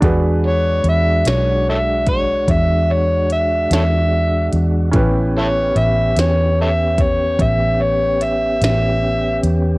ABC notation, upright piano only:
X:1
M:12/8
L:1/8
Q:3/8=49
K:Emix
V:1 name="Upright piano"
[DFGB]12 | [CE=GB]12 |]